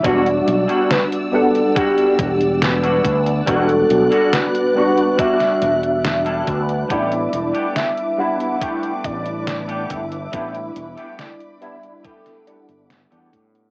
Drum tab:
HH |xxxxxx-xxxxxxxxx|xxxxxx-xxxxxxxxx|xxxxxx-xxxxxxxxx|xxxxxxxxxxxxxxxx|
SD |----o-------o---|----o----o--o---|----o-------o---|----o----o--o---|
BD |o-------o-o---o-|o-------o-----o-|o-------o-o---o-|o-------o-----o-|